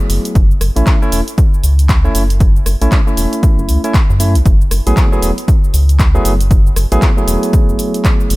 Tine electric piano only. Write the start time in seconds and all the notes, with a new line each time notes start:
Already playing: F#3 A3 B3 E4 G#4
0.76 A3 C#4 E4
1.02 A3 C#4 E4
2.04 A3 C#4 E4
2.81 A3 C#4 E4
3.07 A3 C#4 E4
3.84 A3 C#4 E4
4.20 A3 C#4 E4
4.86 F#3 A3 B3 E4 G#4
5.12 F#3 A3 B3 E4 G#4
6.15 F#3 A3 B3 E4 G#4
6.92 F#3 A3 B3 E4 G#4
7.17 F#3 A3 B3 E4 G#4